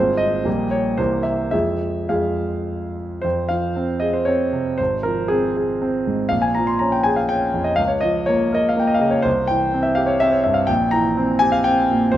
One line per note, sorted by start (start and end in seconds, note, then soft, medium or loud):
0.00 0.43 G#1 soft
0.00 0.44 G#3 soft
0.00 0.44 C4 soft
0.00 0.44 F4 soft
0.00 0.19 C5 medium
0.17 0.71 D#5 medium
0.45 0.96 A#1 soft
0.45 0.97 G3 soft
0.45 0.97 A#3 soft
0.45 0.97 G4 soft
0.71 0.98 C#5 soft
0.97 1.51 C2 soft
0.97 1.51 E3 soft
0.97 1.52 A#3 soft
0.97 1.52 G4 soft
0.97 1.25 C5 medium
1.23 1.50 E5 soft
1.51 2.08 F2 soft
1.51 2.08 F3 soft
1.51 2.08 G#3 soft
1.51 2.08 G#4 soft
1.51 2.09 E5 medium
2.09 3.21 F2 soft
2.09 3.20 F3 soft
2.09 3.21 G#3 soft
2.09 3.21 G#4 soft
2.09 2.96 F5 soft
3.22 4.75 F2 soft
3.22 3.49 C5 medium
3.49 3.92 F3 soft
3.49 4.01 F5 medium
3.76 4.17 C4 soft
4.00 4.42 G#4 soft
4.00 4.13 D#5 medium
4.13 4.27 C5 soft
4.25 4.69 C4 soft
4.25 4.78 C#5 medium
4.53 4.79 C3 soft
4.78 6.27 G#1 soft
4.78 5.04 C5 medium
5.03 5.46 F3 soft
5.03 5.30 A#4 medium
5.28 5.71 C4 soft
5.28 5.55 G#4 medium
5.57 5.96 G#4 soft
5.82 6.21 C4 soft
6.07 6.31 G#2 soft
6.29 7.75 A#1 soft
6.29 6.42 F5 medium
6.42 6.55 G#5 soft
6.55 6.96 F3 soft
6.55 6.67 A#5 medium
6.67 6.80 C6 medium
6.79 7.21 C#4 soft
6.79 6.92 A#5 medium
6.92 7.05 G5 medium
7.03 7.45 G#4 soft
7.03 7.17 G#5 medium
7.16 7.29 F5 soft
7.29 7.69 C#4 soft
7.29 7.66 G5 medium
7.54 7.78 F2 soft
7.64 7.77 D#5 soft
7.76 9.21 C#2 soft
7.76 7.89 F5 medium
7.88 8.01 C#5 soft
8.01 8.42 F3 soft
8.01 8.26 D#5 medium
8.26 8.67 A#3 soft
8.26 8.56 C#5 medium
8.52 8.92 A#4 soft
8.52 8.70 D#5 medium
8.69 8.80 F5 soft
8.77 9.16 A#3 soft
8.77 8.89 G5 medium
8.87 8.96 D#5 soft
8.94 9.04 F5 medium
8.99 9.24 C#3 soft
8.99 9.13 D#5 soft
9.11 9.23 C#5 soft
9.22 10.65 C2 soft
9.22 9.48 C5 medium
9.48 9.88 E3 soft
9.48 9.84 G5 medium
9.74 10.12 C4 soft
9.83 9.96 E5 medium
9.95 10.36 G4 soft
9.95 10.08 F5 medium
10.06 10.20 C#5 medium
10.20 10.60 C4 soft
10.20 10.33 E5 medium
10.32 10.45 C#5 medium
10.44 10.70 G2 soft
10.44 10.57 E5 medium
10.54 10.68 F5 medium
10.67 12.11 A#1 soft
10.67 10.92 G5 medium
10.91 11.32 E3 soft
10.91 11.41 A#5 medium
11.17 11.57 C4 soft
11.39 11.81 G4 soft
11.39 11.53 G#5 medium
11.52 11.66 F5 medium
11.64 12.05 C4 soft
11.64 12.14 G5 medium
11.91 12.15 A#2 soft
12.12 12.17 G#1 soft
12.12 12.17 C5 medium